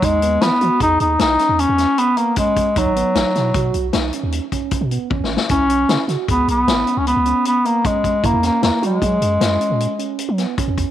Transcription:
<<
  \new Staff \with { instrumentName = "Tine electric piano" } { \time 7/4 \key cis \dorian \tempo 4 = 154 dis'8 b8 e'8 fis'8 gis'4 e'8 cis'4 cis'4 b8 cis'4 | dis'8 b8 dis'8 e'8 fis'4 dis'8 cis'4 cis'4 b8 cis'4 | e'8 cis'8 e'8 fis'8 gis'4 e'8 cis'4 cis'4 b8 cis'4 | e'8 cis'8 e'8 fis'8 gis'4 e'8 cis'4 cis'4 b8 cis'4 | }
  \new Staff \with { instrumentName = "Bass clarinet" } { \time 7/4 \key cis \dorian gis4 b4 dis'8 dis'8 dis'4 cis'4 b8 ais8 gis4 | fis2. r1 | cis'4. r8 b8 b4~ b16 cis'16 b4 b8 ais8 gis4 | ais8 ais8 ais8 gis1 r4. | }
  \new Staff \with { instrumentName = "Sub bass" } { \clef bass \time 7/4 \key cis \dorian e,16 dis,8. e16 r16 e16 r16 e,8 dis,8 b,,8 r16 e,8 e,8 r2 r16 | b,,16 gis,,8 r16 gis,,16 r16 b,8 b,8 b,,8 b,,8 r16 dis,8 r4 b,8 r8 gis,,8 r16 | cis,16 b,,8. cis16 r16 cis16 r16 cis,8 b,,8 gis,,8 r16 cis,8 cis,8 r2 r16 | fis,16 e,8 r16 e,16 r16 fis8 fis8 fis,8 fis,8 r16 ais,8 r4 fis8 r8 e,8 r16 | }
  \new DrumStaff \with { instrumentName = "Drums" } \drummode { \time 7/4 <hh bd>8 hh8 <hh sn>8 hh8 <hh bd>8 hh8 <hh sn>8 <hh sn>8 hh8 <hh sn>8 hh8 hh8 <hh bd>8 <hh bd>8 | <hh bd>8 hh8 <hh sn>8 <hh sn>8 <hh bd>8 hh8 <hh sn>8 hh8 hh8 <hh bd>8 <hh bd>8 hh8 \tuplet 3/2 { <bd tommh>8 sn8 sn8 } | <hh bd>8 hh8 <hh sn>8 <hh sn>8 <hh bd>8 hh8 <hh sn>8 hh8 hh8 hh8 hh8 hh8 <hh bd>8 <hh bd>8 | <hh bd>8 <hh sn>8 <hh sn>8 hh8 <hh bd>8 hh8 <hh sn>8 hh8 hh8 hh8 hh8 <hh sn>8 <hh bd>8 <hh bd>8 | }
>>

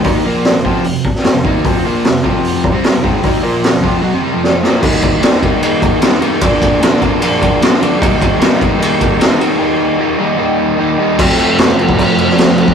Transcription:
<<
  \new Staff \with { instrumentName = "Overdriven electric guitar" } { \clef bass \time 4/4 \key f \mixolydian \tempo 4 = 151 <ees bes ees'>8 <bes, f bes>8. <f, c>16 <f, c f>8 <f, c>8 r8. <f, c>16 <ees bes ees'>8 | <f, c f>8 <bes, f bes>8 <f, c>8 <f, c f>4~ <f, c f>16 <c g c'>8 <f, c>16 <aes, ees aes>8 | <ees bes ees'>8 <bes, f bes>8. <f, c>16 <f, c f>8 <b, ges>16 <f, c>16 <c g>16 <f, c f>8. <bes, f bes>8 | <ees g bes ees'>4 <ees g bes ees'>8 <ees g bes ees'>8 <ees g bes ees'>4 <ees g bes ees'>8 <ees g bes ees'>8 |
<bes, d f bes d'>4 <bes, d f bes d'>8 <bes, d f bes d'>8 <bes, d f bes d'>4 <bes, d f bes d'>8 <bes, d f bes d'>8 | <ees g bes ees'>4 <ees g bes ees'>8 <ees g bes ees'>8 <ees g bes ees'>4 <ees g bes ees'>8 <ees g bes ees'>8 | <ees g bes ees'>4 <ees g bes ees'>8 <ees g bes ees'>8 <ees g bes ees'>4 <ees g bes ees'>8 <ees g bes ees'>8 | <f, c f a c'>1 | }
  \new DrumStaff \with { instrumentName = "Drums" } \drummode { \time 4/4 <hho bd>4 <hho sn>8 bd8 hho8 bd16 sn16 <hho sn>8 bd8 | <hho bd>4 <hho sn>8 bd8 hho8 bd8 <hho sn>8 bd8 | <hho bd>4 <hho sn>8 bd8 r4 sn8 sn8 | <cymc bd>8 <bd cymr>8 <cymr sn>8 <bd cymr>8 cymr8 <bd cymr>8 <cymr sn>8 cymr8 |
<bd cymr>8 <bd cymr>8 <cymr sn>8 <bd cymr>8 cymr8 <bd cymr>8 <cymr sn>8 cymr8 | <bd cymr>8 <bd cymr>8 <cymr sn>8 <bd cymr>8 cymr8 <bd cymr>8 <cymr sn>8 cymr8 | r4 r4 r4 r4 | <cymc bd>8 cymc8 <cymc sn>8 cymc16 bd16 <cymc bd>8 cymc16 sn16 <cymc sn>16 sn16 cymc16 bd16 | }
>>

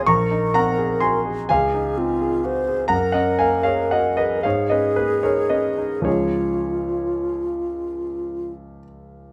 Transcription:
<<
  \new Staff \with { instrumentName = "Flute" } { \time 6/8 \key des \major \tempo 4. = 39 bes'4 r8 aes'8 f'8 c''8 | bes'4. aes'4. | f'2~ f'16 r8. | }
  \new Staff \with { instrumentName = "Grand piano" } { \time 6/8 \key des \major << { <bes'' des'''>8 <ges'' bes''>8 <aes'' c'''>8 <f'' aes''>4. | <ges'' bes''>16 <ees'' ges''>16 <f'' aes''>16 <des'' f''>16 <ees'' ges''>16 <ces'' ees''>16 <des'' f''>16 <ces'' ees''>16 <aes' ces''>16 <bes' des''>16 <ces'' ees''>8 | <aes' des''>2~ <aes' des''>8 r8 | } \\ { bes,,16 ees'16 c'16 aes'16 ges'16 aes'16 des,16 ees'16 c'16 aes'16 ges'16 aes'16 | ges,16 des'16 bes16 aes'16 ges'16 aes'16 aes,16 des'16 bes16 ees'16 des'16 ees'16 | <des, f aes des' ees'>2. | } >> }
>>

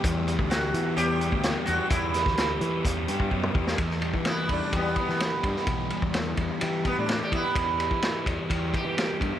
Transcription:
<<
  \new Staff \with { instrumentName = "Sitar" } { \time 4/4 \key e \minor \tempo 4 = 127 r4 fis'4 g'4. fis'8 | e'2. r4 | r4 <b e'>8 <a d'>8 <g b>8 b4.~ | b8 r2 b16 d'8 g'16 <b e'>8~ |
<b e'>4. r4 g'4. | }
  \new Staff \with { instrumentName = "Distorted electric guitar" } { \clef bass \time 4/4 \key e \minor <e, g b g'>8 g8 g'8 b8 g8 g'8 b8 g'8 | e,8 g8 g'8 b8 g8 g'8 b8 g'8 | e,8 g8 e8 g8 g'8 b8 g8 g'8 | e,8 g8 e8 g8 g'8 b8 g8 g'8 |
e,8 g8 e8 g8 g'8 b8 g8 g'8 | }
  \new Staff \with { instrumentName = "Fingered electric bass" } { \clef bass \time 4/4 \key e \minor e,8. d,8. e8 e,8. d,8 r16 e,16 r16 | e,8. d,8. e8 e,8 g,8 fis,8 e,8 | e,8. e8. e,16 r16 e,8 r16 e8 r16 g,16 r16 | b,,8 r16 e,8. e,16 r16 e8 r16 a,8 r16 e16 r16 |
e,8. e8. e,16 r16 e,8 r16 e8 r16 g,16 r16 | }
  \new DrumStaff \with { instrumentName = "Drums" } \drummode { \time 4/4 <hh bd>8 hh16 bd16 <hh sn>8 hh8 hh8 hh16 bd16 <hh sn>8 hh8 | <hh bd>8 <hh sn>16 <bd sn>16 <hh sn>8 hh8 <hh bd>8 hh16 bd16 bd16 toml16 bd16 sn16 | <bd cymr>16 sn16 cymr16 bd16 <cymr sn>8 <bd cymr>8 <bd cymr>8 <bd cymr>16 sn16 <cymr sn>8 <bd cymr>16 sn16 | <bd cymr>8 cymr16 bd16 <cymr sn>8 <bd cymr>8 cymr8 <bd cymr>8 <cymr sn>8 <bd cymr>8 |
<bd cymr>8 cymr16 bd16 <cymr sn>8 <bd cymr>8 <bd cymr>8 <bd cymr>8 <cymr sn>8 <bd cymr>8 | }
>>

